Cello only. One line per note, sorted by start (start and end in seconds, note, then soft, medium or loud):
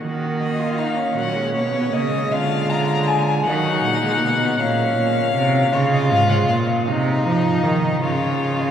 0.02 1.14 D#3 medium
1.18 1.57 A#2 medium
1.56 1.94 B2 medium
1.94 2.32 C#3 medium
2.32 3.44 D3 medium
3.45 3.83 D#3 medium
3.84 4.24 A#2 medium
4.22 4.59 B2 medium
4.60 4.96 A#2 medium
4.97 5.34 A#2 medium
5.35 5.72 C3 loud
5.73 6.13 C#3 loud
6.11 6.49 G#2 loud
6.50 6.89 A#2 medium
6.88 7.25 C3 loud
7.26 7.65 F3 loud
7.63 8.02 D#3 medium
8.03 8.71 C#3 medium